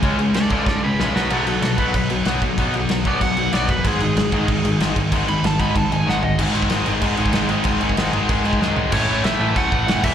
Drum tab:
CC |x-x-x-x---------|x-x-x-x-x-x-x-x-|x-x-x-x-x-x-x-x-|x-x-x-x-x-x-x-x-|
SD |----o---o---o-o-|----o-------o---|----o-------o---|----o-------o---|
FT |----------------|----------------|----------------|----------------|
BD |o-----o-o-------|------o-o-----o-|o-----o-o-----o-|o-----o-o-----o-|

CC |x-x-x-x-x-x-----|x-x-x-x-x-x-x-x-|x-x-x-x-x-x-----|x---x---x---x-x-|
SD |----o-------o---|----o-------o---|----o-------o---|----o-------o---|
FT |--------------o-|----------------|--------------o-|----------------|
BD |o-----o-o-------|o--o----o--o----|o--o----o--o----|o-------o-o---o-|